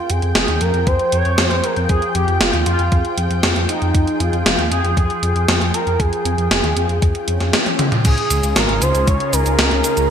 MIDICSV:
0, 0, Header, 1, 6, 480
1, 0, Start_track
1, 0, Key_signature, -4, "minor"
1, 0, Tempo, 512821
1, 1773, Time_signature, 4, 2, 24, 8
1, 9455, End_track
2, 0, Start_track
2, 0, Title_t, "Analog synth lead"
2, 0, Program_c, 0, 81
2, 0, Note_on_c, 0, 65, 91
2, 96, Note_on_c, 0, 68, 94
2, 110, Note_off_c, 0, 65, 0
2, 327, Note_off_c, 0, 68, 0
2, 333, Note_on_c, 0, 68, 96
2, 573, Note_on_c, 0, 70, 100
2, 587, Note_off_c, 0, 68, 0
2, 813, Note_on_c, 0, 72, 107
2, 827, Note_off_c, 0, 70, 0
2, 1048, Note_off_c, 0, 72, 0
2, 1053, Note_on_c, 0, 73, 111
2, 1381, Note_off_c, 0, 73, 0
2, 1381, Note_on_c, 0, 72, 111
2, 1532, Note_on_c, 0, 70, 97
2, 1546, Note_off_c, 0, 72, 0
2, 1766, Note_off_c, 0, 70, 0
2, 1771, Note_on_c, 0, 68, 102
2, 1995, Note_off_c, 0, 68, 0
2, 2012, Note_on_c, 0, 67, 94
2, 2252, Note_on_c, 0, 65, 89
2, 2266, Note_off_c, 0, 67, 0
2, 2486, Note_off_c, 0, 65, 0
2, 2492, Note_on_c, 0, 65, 83
2, 2939, Note_off_c, 0, 65, 0
2, 3451, Note_on_c, 0, 63, 87
2, 3933, Note_on_c, 0, 65, 96
2, 3947, Note_off_c, 0, 63, 0
2, 4407, Note_off_c, 0, 65, 0
2, 4413, Note_on_c, 0, 68, 98
2, 4636, Note_off_c, 0, 68, 0
2, 4650, Note_on_c, 0, 68, 106
2, 5371, Note_on_c, 0, 70, 108
2, 5385, Note_off_c, 0, 68, 0
2, 5613, Note_on_c, 0, 68, 106
2, 5627, Note_off_c, 0, 70, 0
2, 7053, Note_off_c, 0, 68, 0
2, 7532, Note_on_c, 0, 68, 104
2, 8014, Note_on_c, 0, 70, 105
2, 8028, Note_off_c, 0, 68, 0
2, 8251, Note_on_c, 0, 72, 103
2, 8265, Note_off_c, 0, 70, 0
2, 8489, Note_on_c, 0, 73, 109
2, 8503, Note_off_c, 0, 72, 0
2, 8730, Note_on_c, 0, 70, 112
2, 8744, Note_off_c, 0, 73, 0
2, 9455, Note_off_c, 0, 70, 0
2, 9455, End_track
3, 0, Start_track
3, 0, Title_t, "Analog synth pad"
3, 0, Program_c, 1, 89
3, 0, Note_on_c, 1, 53, 80
3, 0, Note_on_c, 1, 65, 73
3, 0, Note_on_c, 1, 68, 72
3, 0, Note_on_c, 1, 79, 89
3, 7496, Note_off_c, 1, 65, 0
3, 7496, Note_off_c, 1, 79, 0
3, 7497, Note_off_c, 1, 53, 0
3, 7497, Note_off_c, 1, 68, 0
3, 7532, Note_on_c, 1, 63, 75
3, 7532, Note_on_c, 1, 68, 91
3, 7533, Note_on_c, 1, 61, 73
3, 7534, Note_on_c, 1, 49, 79
3, 7534, Note_on_c, 1, 65, 78
3, 9455, Note_off_c, 1, 49, 0
3, 9455, Note_off_c, 1, 61, 0
3, 9455, Note_off_c, 1, 63, 0
3, 9455, Note_off_c, 1, 65, 0
3, 9455, Note_off_c, 1, 68, 0
3, 9455, End_track
4, 0, Start_track
4, 0, Title_t, "Detuned saw bass"
4, 0, Program_c, 2, 39
4, 94, Note_on_c, 2, 41, 94
4, 190, Note_off_c, 2, 41, 0
4, 214, Note_on_c, 2, 41, 77
4, 310, Note_off_c, 2, 41, 0
4, 333, Note_on_c, 2, 29, 104
4, 430, Note_off_c, 2, 29, 0
4, 454, Note_on_c, 2, 39, 75
4, 550, Note_off_c, 2, 39, 0
4, 575, Note_on_c, 2, 41, 91
4, 671, Note_off_c, 2, 41, 0
4, 693, Note_on_c, 2, 41, 78
4, 790, Note_off_c, 2, 41, 0
4, 813, Note_on_c, 2, 41, 96
4, 910, Note_off_c, 2, 41, 0
4, 1054, Note_on_c, 2, 41, 90
4, 1151, Note_off_c, 2, 41, 0
4, 1175, Note_on_c, 2, 41, 78
4, 1271, Note_off_c, 2, 41, 0
4, 1294, Note_on_c, 2, 41, 97
4, 1391, Note_off_c, 2, 41, 0
4, 1414, Note_on_c, 2, 41, 75
4, 1511, Note_off_c, 2, 41, 0
4, 1654, Note_on_c, 2, 41, 79
4, 1751, Note_off_c, 2, 41, 0
4, 1774, Note_on_c, 2, 41, 91
4, 1870, Note_off_c, 2, 41, 0
4, 2012, Note_on_c, 2, 41, 90
4, 2110, Note_off_c, 2, 41, 0
4, 2133, Note_on_c, 2, 41, 78
4, 2230, Note_off_c, 2, 41, 0
4, 2251, Note_on_c, 2, 29, 103
4, 2349, Note_off_c, 2, 29, 0
4, 2371, Note_on_c, 2, 39, 78
4, 2469, Note_off_c, 2, 39, 0
4, 2491, Note_on_c, 2, 41, 89
4, 2589, Note_off_c, 2, 41, 0
4, 2613, Note_on_c, 2, 41, 80
4, 2710, Note_off_c, 2, 41, 0
4, 2733, Note_on_c, 2, 41, 99
4, 2830, Note_off_c, 2, 41, 0
4, 2972, Note_on_c, 2, 41, 91
4, 3070, Note_off_c, 2, 41, 0
4, 3092, Note_on_c, 2, 41, 83
4, 3190, Note_off_c, 2, 41, 0
4, 3210, Note_on_c, 2, 41, 95
4, 3309, Note_off_c, 2, 41, 0
4, 3333, Note_on_c, 2, 41, 72
4, 3430, Note_off_c, 2, 41, 0
4, 3574, Note_on_c, 2, 41, 79
4, 3670, Note_off_c, 2, 41, 0
4, 3693, Note_on_c, 2, 41, 92
4, 3790, Note_off_c, 2, 41, 0
4, 3932, Note_on_c, 2, 41, 91
4, 4030, Note_off_c, 2, 41, 0
4, 4053, Note_on_c, 2, 41, 80
4, 4150, Note_off_c, 2, 41, 0
4, 4172, Note_on_c, 2, 29, 98
4, 4269, Note_off_c, 2, 29, 0
4, 4292, Note_on_c, 2, 39, 75
4, 4389, Note_off_c, 2, 39, 0
4, 4411, Note_on_c, 2, 41, 93
4, 4509, Note_off_c, 2, 41, 0
4, 4530, Note_on_c, 2, 41, 83
4, 4628, Note_off_c, 2, 41, 0
4, 4653, Note_on_c, 2, 41, 93
4, 4750, Note_off_c, 2, 41, 0
4, 4892, Note_on_c, 2, 41, 94
4, 4989, Note_off_c, 2, 41, 0
4, 5011, Note_on_c, 2, 41, 82
4, 5109, Note_off_c, 2, 41, 0
4, 5130, Note_on_c, 2, 41, 98
4, 5229, Note_off_c, 2, 41, 0
4, 5251, Note_on_c, 2, 41, 74
4, 5349, Note_off_c, 2, 41, 0
4, 5491, Note_on_c, 2, 41, 79
4, 5589, Note_off_c, 2, 41, 0
4, 5613, Note_on_c, 2, 41, 91
4, 5710, Note_off_c, 2, 41, 0
4, 5850, Note_on_c, 2, 41, 93
4, 5949, Note_off_c, 2, 41, 0
4, 5971, Note_on_c, 2, 41, 82
4, 6069, Note_off_c, 2, 41, 0
4, 6091, Note_on_c, 2, 29, 104
4, 6189, Note_off_c, 2, 29, 0
4, 6209, Note_on_c, 2, 39, 78
4, 6308, Note_off_c, 2, 39, 0
4, 6330, Note_on_c, 2, 41, 92
4, 6428, Note_off_c, 2, 41, 0
4, 6449, Note_on_c, 2, 41, 80
4, 6548, Note_off_c, 2, 41, 0
4, 6574, Note_on_c, 2, 41, 99
4, 6670, Note_off_c, 2, 41, 0
4, 6810, Note_on_c, 2, 41, 93
4, 6909, Note_off_c, 2, 41, 0
4, 6932, Note_on_c, 2, 41, 80
4, 7029, Note_off_c, 2, 41, 0
4, 7534, Note_on_c, 2, 37, 99
4, 7631, Note_off_c, 2, 37, 0
4, 7773, Note_on_c, 2, 37, 96
4, 7870, Note_off_c, 2, 37, 0
4, 7893, Note_on_c, 2, 37, 79
4, 7990, Note_off_c, 2, 37, 0
4, 8013, Note_on_c, 2, 32, 103
4, 8110, Note_off_c, 2, 32, 0
4, 8133, Note_on_c, 2, 32, 79
4, 8230, Note_off_c, 2, 32, 0
4, 8254, Note_on_c, 2, 37, 93
4, 8351, Note_off_c, 2, 37, 0
4, 8375, Note_on_c, 2, 37, 83
4, 8471, Note_off_c, 2, 37, 0
4, 8495, Note_on_c, 2, 37, 100
4, 8591, Note_off_c, 2, 37, 0
4, 8735, Note_on_c, 2, 37, 96
4, 8831, Note_off_c, 2, 37, 0
4, 8856, Note_on_c, 2, 37, 81
4, 8951, Note_off_c, 2, 37, 0
4, 8976, Note_on_c, 2, 37, 100
4, 9071, Note_off_c, 2, 37, 0
4, 9095, Note_on_c, 2, 37, 76
4, 9191, Note_off_c, 2, 37, 0
4, 9335, Note_on_c, 2, 37, 81
4, 9431, Note_off_c, 2, 37, 0
4, 9455, End_track
5, 0, Start_track
5, 0, Title_t, "Swell"
5, 0, Program_c, 3, 103
5, 6572, Note_on_c, 3, 60, 75
5, 7533, Note_off_c, 3, 60, 0
5, 9455, End_track
6, 0, Start_track
6, 0, Title_t, "Drums"
6, 90, Note_on_c, 9, 42, 82
6, 183, Note_off_c, 9, 42, 0
6, 209, Note_on_c, 9, 42, 37
6, 303, Note_off_c, 9, 42, 0
6, 329, Note_on_c, 9, 38, 110
6, 329, Note_on_c, 9, 42, 60
6, 423, Note_off_c, 9, 38, 0
6, 423, Note_off_c, 9, 42, 0
6, 450, Note_on_c, 9, 42, 37
6, 543, Note_off_c, 9, 42, 0
6, 569, Note_on_c, 9, 42, 81
6, 663, Note_off_c, 9, 42, 0
6, 692, Note_on_c, 9, 42, 35
6, 785, Note_off_c, 9, 42, 0
6, 813, Note_on_c, 9, 36, 115
6, 813, Note_on_c, 9, 42, 62
6, 906, Note_off_c, 9, 42, 0
6, 907, Note_off_c, 9, 36, 0
6, 931, Note_on_c, 9, 42, 36
6, 1025, Note_off_c, 9, 42, 0
6, 1052, Note_on_c, 9, 42, 86
6, 1145, Note_off_c, 9, 42, 0
6, 1172, Note_on_c, 9, 42, 36
6, 1265, Note_off_c, 9, 42, 0
6, 1291, Note_on_c, 9, 38, 117
6, 1291, Note_on_c, 9, 42, 61
6, 1385, Note_off_c, 9, 38, 0
6, 1385, Note_off_c, 9, 42, 0
6, 1412, Note_on_c, 9, 42, 37
6, 1505, Note_off_c, 9, 42, 0
6, 1531, Note_on_c, 9, 42, 81
6, 1625, Note_off_c, 9, 42, 0
6, 1652, Note_on_c, 9, 42, 34
6, 1745, Note_off_c, 9, 42, 0
6, 1771, Note_on_c, 9, 42, 64
6, 1773, Note_on_c, 9, 36, 109
6, 1865, Note_off_c, 9, 42, 0
6, 1867, Note_off_c, 9, 36, 0
6, 1892, Note_on_c, 9, 42, 36
6, 1986, Note_off_c, 9, 42, 0
6, 2012, Note_on_c, 9, 42, 84
6, 2106, Note_off_c, 9, 42, 0
6, 2134, Note_on_c, 9, 42, 36
6, 2227, Note_off_c, 9, 42, 0
6, 2252, Note_on_c, 9, 38, 111
6, 2252, Note_on_c, 9, 42, 58
6, 2346, Note_off_c, 9, 38, 0
6, 2346, Note_off_c, 9, 42, 0
6, 2372, Note_on_c, 9, 42, 37
6, 2466, Note_off_c, 9, 42, 0
6, 2491, Note_on_c, 9, 42, 81
6, 2585, Note_off_c, 9, 42, 0
6, 2611, Note_on_c, 9, 42, 36
6, 2705, Note_off_c, 9, 42, 0
6, 2732, Note_on_c, 9, 42, 60
6, 2733, Note_on_c, 9, 36, 108
6, 2825, Note_off_c, 9, 42, 0
6, 2827, Note_off_c, 9, 36, 0
6, 2852, Note_on_c, 9, 42, 36
6, 2945, Note_off_c, 9, 42, 0
6, 2972, Note_on_c, 9, 42, 85
6, 3066, Note_off_c, 9, 42, 0
6, 3094, Note_on_c, 9, 42, 37
6, 3188, Note_off_c, 9, 42, 0
6, 3213, Note_on_c, 9, 38, 110
6, 3213, Note_on_c, 9, 42, 60
6, 3306, Note_off_c, 9, 38, 0
6, 3306, Note_off_c, 9, 42, 0
6, 3333, Note_on_c, 9, 42, 37
6, 3427, Note_off_c, 9, 42, 0
6, 3454, Note_on_c, 9, 42, 85
6, 3547, Note_off_c, 9, 42, 0
6, 3574, Note_on_c, 9, 42, 35
6, 3667, Note_off_c, 9, 42, 0
6, 3693, Note_on_c, 9, 36, 109
6, 3693, Note_on_c, 9, 42, 65
6, 3786, Note_off_c, 9, 36, 0
6, 3787, Note_off_c, 9, 42, 0
6, 3814, Note_on_c, 9, 42, 35
6, 3907, Note_off_c, 9, 42, 0
6, 3934, Note_on_c, 9, 42, 85
6, 4027, Note_off_c, 9, 42, 0
6, 4054, Note_on_c, 9, 42, 36
6, 4148, Note_off_c, 9, 42, 0
6, 4175, Note_on_c, 9, 38, 112
6, 4175, Note_on_c, 9, 42, 64
6, 4268, Note_off_c, 9, 38, 0
6, 4268, Note_off_c, 9, 42, 0
6, 4294, Note_on_c, 9, 42, 36
6, 4388, Note_off_c, 9, 42, 0
6, 4414, Note_on_c, 9, 42, 85
6, 4507, Note_off_c, 9, 42, 0
6, 4535, Note_on_c, 9, 42, 36
6, 4629, Note_off_c, 9, 42, 0
6, 4652, Note_on_c, 9, 36, 102
6, 4655, Note_on_c, 9, 42, 62
6, 4746, Note_off_c, 9, 36, 0
6, 4749, Note_off_c, 9, 42, 0
6, 4774, Note_on_c, 9, 42, 36
6, 4868, Note_off_c, 9, 42, 0
6, 4894, Note_on_c, 9, 42, 88
6, 4988, Note_off_c, 9, 42, 0
6, 5015, Note_on_c, 9, 42, 37
6, 5108, Note_off_c, 9, 42, 0
6, 5134, Note_on_c, 9, 38, 110
6, 5134, Note_on_c, 9, 42, 61
6, 5227, Note_off_c, 9, 38, 0
6, 5227, Note_off_c, 9, 42, 0
6, 5255, Note_on_c, 9, 42, 39
6, 5349, Note_off_c, 9, 42, 0
6, 5375, Note_on_c, 9, 42, 90
6, 5468, Note_off_c, 9, 42, 0
6, 5494, Note_on_c, 9, 42, 37
6, 5587, Note_off_c, 9, 42, 0
6, 5613, Note_on_c, 9, 36, 109
6, 5614, Note_on_c, 9, 42, 66
6, 5706, Note_off_c, 9, 36, 0
6, 5708, Note_off_c, 9, 42, 0
6, 5735, Note_on_c, 9, 42, 38
6, 5829, Note_off_c, 9, 42, 0
6, 5854, Note_on_c, 9, 42, 90
6, 5948, Note_off_c, 9, 42, 0
6, 5974, Note_on_c, 9, 42, 39
6, 6068, Note_off_c, 9, 42, 0
6, 6094, Note_on_c, 9, 38, 106
6, 6094, Note_on_c, 9, 42, 67
6, 6188, Note_off_c, 9, 38, 0
6, 6188, Note_off_c, 9, 42, 0
6, 6213, Note_on_c, 9, 42, 40
6, 6306, Note_off_c, 9, 42, 0
6, 6333, Note_on_c, 9, 42, 88
6, 6426, Note_off_c, 9, 42, 0
6, 6452, Note_on_c, 9, 42, 39
6, 6546, Note_off_c, 9, 42, 0
6, 6572, Note_on_c, 9, 42, 65
6, 6573, Note_on_c, 9, 36, 109
6, 6666, Note_off_c, 9, 36, 0
6, 6666, Note_off_c, 9, 42, 0
6, 6692, Note_on_c, 9, 42, 38
6, 6785, Note_off_c, 9, 42, 0
6, 6811, Note_on_c, 9, 42, 92
6, 6905, Note_off_c, 9, 42, 0
6, 6931, Note_on_c, 9, 38, 36
6, 6931, Note_on_c, 9, 42, 39
6, 7025, Note_off_c, 9, 38, 0
6, 7025, Note_off_c, 9, 42, 0
6, 7052, Note_on_c, 9, 38, 113
6, 7052, Note_on_c, 9, 42, 64
6, 7052, Note_on_c, 9, 48, 59
6, 7145, Note_off_c, 9, 38, 0
6, 7145, Note_off_c, 9, 42, 0
6, 7145, Note_off_c, 9, 48, 0
6, 7172, Note_on_c, 9, 42, 39
6, 7172, Note_on_c, 9, 48, 62
6, 7266, Note_off_c, 9, 42, 0
6, 7266, Note_off_c, 9, 48, 0
6, 7292, Note_on_c, 9, 42, 87
6, 7292, Note_on_c, 9, 47, 85
6, 7385, Note_off_c, 9, 42, 0
6, 7385, Note_off_c, 9, 47, 0
6, 7413, Note_on_c, 9, 42, 38
6, 7413, Note_on_c, 9, 45, 80
6, 7507, Note_off_c, 9, 42, 0
6, 7507, Note_off_c, 9, 45, 0
6, 7533, Note_on_c, 9, 42, 73
6, 7533, Note_on_c, 9, 49, 104
6, 7533, Note_on_c, 9, 69, 32
6, 7534, Note_on_c, 9, 36, 121
6, 7626, Note_off_c, 9, 42, 0
6, 7626, Note_off_c, 9, 49, 0
6, 7626, Note_off_c, 9, 69, 0
6, 7627, Note_off_c, 9, 36, 0
6, 7653, Note_on_c, 9, 42, 43
6, 7747, Note_off_c, 9, 42, 0
6, 7773, Note_on_c, 9, 42, 92
6, 7773, Note_on_c, 9, 69, 70
6, 7867, Note_off_c, 9, 42, 0
6, 7867, Note_off_c, 9, 69, 0
6, 7894, Note_on_c, 9, 42, 43
6, 7894, Note_on_c, 9, 69, 41
6, 7987, Note_off_c, 9, 42, 0
6, 7987, Note_off_c, 9, 69, 0
6, 8013, Note_on_c, 9, 38, 117
6, 8013, Note_on_c, 9, 42, 71
6, 8013, Note_on_c, 9, 69, 31
6, 8107, Note_off_c, 9, 38, 0
6, 8107, Note_off_c, 9, 42, 0
6, 8107, Note_off_c, 9, 69, 0
6, 8133, Note_on_c, 9, 42, 41
6, 8227, Note_off_c, 9, 42, 0
6, 8253, Note_on_c, 9, 42, 94
6, 8253, Note_on_c, 9, 69, 68
6, 8346, Note_off_c, 9, 42, 0
6, 8346, Note_off_c, 9, 69, 0
6, 8374, Note_on_c, 9, 42, 42
6, 8374, Note_on_c, 9, 69, 40
6, 8468, Note_off_c, 9, 42, 0
6, 8468, Note_off_c, 9, 69, 0
6, 8494, Note_on_c, 9, 36, 116
6, 8494, Note_on_c, 9, 42, 70
6, 8494, Note_on_c, 9, 69, 31
6, 8587, Note_off_c, 9, 42, 0
6, 8587, Note_off_c, 9, 69, 0
6, 8588, Note_off_c, 9, 36, 0
6, 8614, Note_on_c, 9, 42, 42
6, 8708, Note_off_c, 9, 42, 0
6, 8734, Note_on_c, 9, 42, 95
6, 8734, Note_on_c, 9, 69, 74
6, 8828, Note_off_c, 9, 42, 0
6, 8828, Note_off_c, 9, 69, 0
6, 8853, Note_on_c, 9, 42, 43
6, 8853, Note_on_c, 9, 69, 43
6, 8947, Note_off_c, 9, 42, 0
6, 8947, Note_off_c, 9, 69, 0
6, 8973, Note_on_c, 9, 38, 114
6, 8973, Note_on_c, 9, 42, 68
6, 8973, Note_on_c, 9, 69, 30
6, 9066, Note_off_c, 9, 38, 0
6, 9066, Note_off_c, 9, 42, 0
6, 9066, Note_off_c, 9, 69, 0
6, 9091, Note_on_c, 9, 42, 41
6, 9185, Note_off_c, 9, 42, 0
6, 9211, Note_on_c, 9, 42, 95
6, 9211, Note_on_c, 9, 69, 75
6, 9305, Note_off_c, 9, 42, 0
6, 9305, Note_off_c, 9, 69, 0
6, 9332, Note_on_c, 9, 42, 42
6, 9332, Note_on_c, 9, 69, 42
6, 9425, Note_off_c, 9, 42, 0
6, 9425, Note_off_c, 9, 69, 0
6, 9455, End_track
0, 0, End_of_file